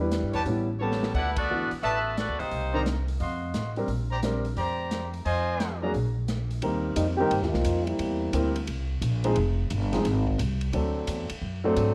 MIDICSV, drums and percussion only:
0, 0, Header, 1, 2, 480
1, 0, Start_track
1, 0, Tempo, 342466
1, 1602, Time_signature, 4, 2, 24, 8
1, 16739, End_track
2, 0, Start_track
2, 0, Title_t, "Drums"
2, 162, Note_on_c, 9, 42, 58
2, 166, Note_on_c, 9, 38, 64
2, 302, Note_off_c, 9, 42, 0
2, 306, Note_off_c, 9, 38, 0
2, 468, Note_on_c, 9, 46, 40
2, 609, Note_off_c, 9, 46, 0
2, 642, Note_on_c, 9, 46, 44
2, 782, Note_off_c, 9, 46, 0
2, 1287, Note_on_c, 9, 38, 59
2, 1427, Note_off_c, 9, 38, 0
2, 1445, Note_on_c, 9, 38, 76
2, 1585, Note_off_c, 9, 38, 0
2, 1604, Note_on_c, 9, 36, 63
2, 1606, Note_on_c, 9, 49, 61
2, 1744, Note_off_c, 9, 36, 0
2, 1746, Note_off_c, 9, 49, 0
2, 1911, Note_on_c, 9, 51, 76
2, 1917, Note_on_c, 9, 36, 78
2, 2052, Note_off_c, 9, 51, 0
2, 2057, Note_off_c, 9, 36, 0
2, 2397, Note_on_c, 9, 46, 39
2, 2537, Note_off_c, 9, 46, 0
2, 2566, Note_on_c, 9, 46, 42
2, 2707, Note_off_c, 9, 46, 0
2, 3047, Note_on_c, 9, 42, 48
2, 3051, Note_on_c, 9, 38, 60
2, 3187, Note_off_c, 9, 42, 0
2, 3191, Note_off_c, 9, 38, 0
2, 3358, Note_on_c, 9, 46, 34
2, 3499, Note_off_c, 9, 46, 0
2, 3522, Note_on_c, 9, 46, 42
2, 3662, Note_off_c, 9, 46, 0
2, 4007, Note_on_c, 9, 42, 56
2, 4012, Note_on_c, 9, 38, 69
2, 4148, Note_off_c, 9, 42, 0
2, 4152, Note_off_c, 9, 38, 0
2, 4318, Note_on_c, 9, 46, 39
2, 4458, Note_off_c, 9, 46, 0
2, 4482, Note_on_c, 9, 46, 42
2, 4622, Note_off_c, 9, 46, 0
2, 4960, Note_on_c, 9, 42, 51
2, 4964, Note_on_c, 9, 38, 65
2, 5100, Note_off_c, 9, 42, 0
2, 5105, Note_off_c, 9, 38, 0
2, 5273, Note_on_c, 9, 46, 35
2, 5413, Note_off_c, 9, 46, 0
2, 5438, Note_on_c, 9, 46, 41
2, 5578, Note_off_c, 9, 46, 0
2, 5923, Note_on_c, 9, 42, 56
2, 5928, Note_on_c, 9, 38, 67
2, 6063, Note_off_c, 9, 42, 0
2, 6068, Note_off_c, 9, 38, 0
2, 6233, Note_on_c, 9, 46, 37
2, 6373, Note_off_c, 9, 46, 0
2, 6400, Note_on_c, 9, 46, 40
2, 6540, Note_off_c, 9, 46, 0
2, 6883, Note_on_c, 9, 42, 51
2, 6887, Note_on_c, 9, 38, 60
2, 7023, Note_off_c, 9, 42, 0
2, 7027, Note_off_c, 9, 38, 0
2, 7198, Note_on_c, 9, 46, 38
2, 7338, Note_off_c, 9, 46, 0
2, 7363, Note_on_c, 9, 46, 43
2, 7503, Note_off_c, 9, 46, 0
2, 7846, Note_on_c, 9, 42, 53
2, 7850, Note_on_c, 9, 38, 73
2, 7986, Note_off_c, 9, 42, 0
2, 7991, Note_off_c, 9, 38, 0
2, 8329, Note_on_c, 9, 46, 42
2, 8469, Note_off_c, 9, 46, 0
2, 8806, Note_on_c, 9, 42, 55
2, 8810, Note_on_c, 9, 38, 61
2, 8946, Note_off_c, 9, 42, 0
2, 8950, Note_off_c, 9, 38, 0
2, 9121, Note_on_c, 9, 46, 39
2, 9261, Note_off_c, 9, 46, 0
2, 9280, Note_on_c, 9, 51, 61
2, 9420, Note_off_c, 9, 51, 0
2, 9758, Note_on_c, 9, 44, 70
2, 9758, Note_on_c, 9, 51, 81
2, 9898, Note_off_c, 9, 44, 0
2, 9898, Note_off_c, 9, 51, 0
2, 10245, Note_on_c, 9, 51, 66
2, 10385, Note_off_c, 9, 51, 0
2, 10412, Note_on_c, 9, 38, 29
2, 10552, Note_off_c, 9, 38, 0
2, 10569, Note_on_c, 9, 38, 48
2, 10710, Note_off_c, 9, 38, 0
2, 10715, Note_on_c, 9, 44, 61
2, 10715, Note_on_c, 9, 51, 77
2, 10856, Note_off_c, 9, 44, 0
2, 10856, Note_off_c, 9, 51, 0
2, 11032, Note_on_c, 9, 51, 44
2, 11172, Note_off_c, 9, 51, 0
2, 11199, Note_on_c, 9, 51, 67
2, 11339, Note_off_c, 9, 51, 0
2, 11677, Note_on_c, 9, 44, 66
2, 11677, Note_on_c, 9, 51, 82
2, 11818, Note_off_c, 9, 44, 0
2, 11818, Note_off_c, 9, 51, 0
2, 11993, Note_on_c, 9, 51, 58
2, 12133, Note_off_c, 9, 51, 0
2, 12157, Note_on_c, 9, 51, 72
2, 12297, Note_off_c, 9, 51, 0
2, 12644, Note_on_c, 9, 44, 52
2, 12644, Note_on_c, 9, 51, 71
2, 12785, Note_off_c, 9, 44, 0
2, 12785, Note_off_c, 9, 51, 0
2, 12953, Note_on_c, 9, 51, 53
2, 13094, Note_off_c, 9, 51, 0
2, 13117, Note_on_c, 9, 51, 61
2, 13257, Note_off_c, 9, 51, 0
2, 13601, Note_on_c, 9, 44, 65
2, 13601, Note_on_c, 9, 51, 85
2, 13741, Note_off_c, 9, 44, 0
2, 13741, Note_off_c, 9, 51, 0
2, 13914, Note_on_c, 9, 51, 52
2, 13918, Note_on_c, 9, 38, 49
2, 14054, Note_off_c, 9, 51, 0
2, 14058, Note_off_c, 9, 38, 0
2, 14085, Note_on_c, 9, 51, 68
2, 14089, Note_on_c, 9, 38, 37
2, 14225, Note_off_c, 9, 51, 0
2, 14229, Note_off_c, 9, 38, 0
2, 14397, Note_on_c, 9, 36, 64
2, 14538, Note_off_c, 9, 36, 0
2, 14565, Note_on_c, 9, 44, 65
2, 14565, Note_on_c, 9, 51, 73
2, 14705, Note_off_c, 9, 44, 0
2, 14705, Note_off_c, 9, 51, 0
2, 14871, Note_on_c, 9, 51, 54
2, 15012, Note_off_c, 9, 51, 0
2, 15041, Note_on_c, 9, 51, 62
2, 15181, Note_off_c, 9, 51, 0
2, 15521, Note_on_c, 9, 44, 69
2, 15521, Note_on_c, 9, 51, 76
2, 15661, Note_off_c, 9, 44, 0
2, 15661, Note_off_c, 9, 51, 0
2, 15832, Note_on_c, 9, 51, 74
2, 15972, Note_off_c, 9, 51, 0
2, 16486, Note_on_c, 9, 44, 53
2, 16486, Note_on_c, 9, 51, 69
2, 16626, Note_off_c, 9, 44, 0
2, 16626, Note_off_c, 9, 51, 0
2, 16739, End_track
0, 0, End_of_file